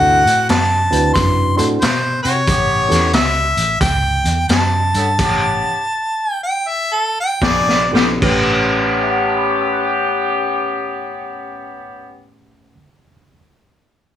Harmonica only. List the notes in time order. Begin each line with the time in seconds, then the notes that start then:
Already playing: F#5
0.49 A5
1.13 C6
1.57 C6
1.81 C5
2.23 C#5
3.14 E5
3.81 G5
4.48 A5
6.43 G5
6.68 E5
6.94 A4
7.20 G5
7.44 D5